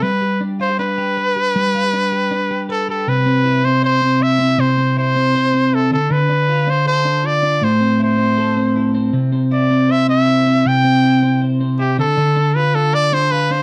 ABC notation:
X:1
M:4/4
L:1/16
Q:1/4=158
K:C
V:1 name="Trumpet"
B4 z2 c2 B8- | B12 A2 A2 | B6 c2 c4 e4 | c4 c8 A2 A2 |
B6 c2 c4 d4 | c4 c8- c2 z2 | z4 d4 e2 e6 | g8 z4 G2 A2- |
A4 B2 A2 d2 c2 B2 c2 |]
V:2 name="Clean electric guitar"
G,2 G2 D2 F G D2 G2 B2 G2 | G,2 F G D2 G2 D2 G2 B2 G2 | C,2 C2 E2 C2 c2 C2 E2 C2 | C,2 C2 E2 C2 c2 C2 E2 D,2 |
D,2 D2 F2 D2 A2 D2 F2 D2 | A,,2 C2 E2 C2 A2 C2 E2 C2 | C,2 C2 E2 C2 c2 C2 E2 C2 | C,2 C2 E2 C2 c2 C2 E2 D,2 |
D,2 D2 F2 D2 A2 D2 F2 D2 |]